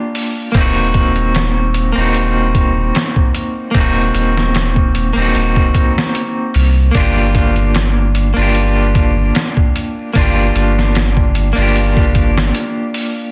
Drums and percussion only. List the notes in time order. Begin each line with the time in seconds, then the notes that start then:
0.15 open hi-hat
0.54 kick, closed hi-hat
0.94 kick, closed hi-hat
1.16 closed hi-hat
1.35 snare, closed hi-hat
1.74 closed hi-hat
2.15 closed hi-hat
2.55 kick, closed hi-hat
2.95 snare, closed hi-hat
3.16 kick
3.35 closed hi-hat
3.75 kick, closed hi-hat
4.15 closed hi-hat
4.38 snare
4.54 snare, closed hi-hat
4.76 kick
4.95 closed hi-hat
5.35 closed hi-hat
5.56 kick
5.75 kick, closed hi-hat
5.98 snare
6.15 closed hi-hat
6.54 open hi-hat
6.95 kick, closed hi-hat
7.35 kick, closed hi-hat
7.56 closed hi-hat
7.74 snare, closed hi-hat
8.15 closed hi-hat
8.55 closed hi-hat
8.95 kick, closed hi-hat
9.35 snare, closed hi-hat
9.57 kick
9.76 closed hi-hat
10.15 kick, closed hi-hat
10.56 closed hi-hat
10.79 snare
10.95 snare, closed hi-hat
11.17 kick
11.35 closed hi-hat
11.76 closed hi-hat
11.97 kick
12.15 kick, closed hi-hat
12.38 snare
12.55 closed hi-hat
12.94 open hi-hat